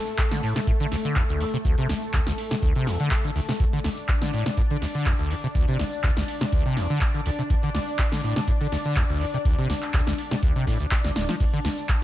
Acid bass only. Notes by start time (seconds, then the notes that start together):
0.32 D3
0.43 A2
0.56 C3
0.67 A2
0.80 D3
0.92 D2
1.05 D3
1.16 D2
1.29 D2
1.41 F2
1.54 C3
1.65 D2
1.78 C3
1.89 D2
2.14 D2
2.27 D2
2.51 C3
2.63 D2
2.76 C3
2.87 E2
3.00 D3
3.24 D3
3.36 D2
3.49 C3
3.60 D2
3.73 D3
3.85 D2
4.22 D3
4.33 A2
4.46 C3
4.58 A2
4.71 D3
4.82 D2
4.95 D3
5.06 D2
5.19 D2
5.31 F2
5.44 C3
5.55 D2
5.68 C3
5.80 D2
6.04 D2
6.17 D2
6.41 C3
6.53 D2
6.66 C3
6.77 E2
6.90 D3
7.14 D3
7.26 D2
7.39 C3
7.50 D2
7.63 D3
7.75 D2
8.12 D3
8.24 A2
8.36 C3
8.48 A2
8.61 D3
8.72 D2
8.85 D3
8.97 D2
9.10 D2
9.21 F2
9.34 C3
9.45 D2
9.58 C3
9.70 D2
9.94 D2
10.07 D2
10.32 C3
10.43 D2
10.56 C3
10.67 A2
10.80 D2
11.05 D2
11.16 D1
11.29 F3
11.40 D2
11.53 D3
11.65 D2